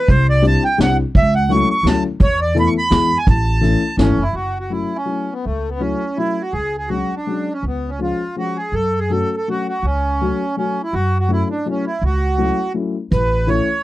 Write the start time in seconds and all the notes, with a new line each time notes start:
Already playing: B4
0.08 C2 C5, kick, closed hi-hat
0.30 D5
0.42 G3 C4 D4 E4 G4, closed hi-hat
0.47 A5
0.64 G5
0.78 C2 G3 C4 D4 E4 G4 F#5, snare, closed hi-hat
1.15 C#2 E5, kick, closed hi-hat
1.35 F#5
1.49 F#3 A3 C#4 E4 F#4 C#6, closed hi-hat
1.70 C#6
1.83 D2 F#3 A3 C#4 E4 F#4, snare, closed hi-hat
1.88 A5
2.20 E2 C#5, kick, closed hi-hat
2.41 D5
2.55 E3 A3 B3 E4 A4, closed hi-hat
2.60 B5
2.67 C#6
2.78 B5
2.90 E2 E3 G#3 B3 E4 G#4, snare, closed hi-hat
3.18 G#5
3.27 A1 A5, kick, closed hi-hat
3.61 E3 A3 C#4 E4 A4, closed hi-hat
3.97 G#1 E3 A3 C#4 E4 A4, snare, closed hi-hat
4.17 F#1
4.22 E4
4.33 F#1 F#4
4.60 F#4
4.70 F#3 A3 C#4 E4
4.96 C#4
5.05 F#3 A3 C#4 E4
5.32 B3
5.44 C#2 A3
5.70 B3
5.79 F#3 A3 C#4 E4
6.17 F#3 A3 C#4 E4
6.42 F#4
6.53 C#2 G#4
6.78 G#4
6.89 F#3 G#3 C#4 F#4
7.16 D4
7.27 F#3 G#3 C#4 F#4
7.53 C#4
7.63 C#2
7.67 B3
7.89 C#4
7.99 F3 G#3 C#4 F4
8.36 F3 G#3 C#4 F4 F#4
8.57 G#4
8.72 F#2 A4
8.99 G#4
9.10 F#3 A3 C#4 F#4 A4
9.37 A4
9.48 F#3 A3 C#4 F#4
9.69 F#4
9.82 C#2 C#4
10.21 F#3 A3 C#4 F#4
10.57 F#3 A3 C#4 F#4
10.83 E4
10.93 F#2 F#4
11.20 F#4
11.28 F#3 A3 C#4 E4
11.51 D4
11.66 F#3 A3 C#4 E4
11.70 C#4
11.86 E4
12.02 C#2 F#4
12.38 F#3 A3 C#4 E4
12.74 F#3 A3 C#4 E4
13.11 A1 B4, kick, closed hi-hat
13.47 E3 A3 C#4 E4 C#5, closed hi-hat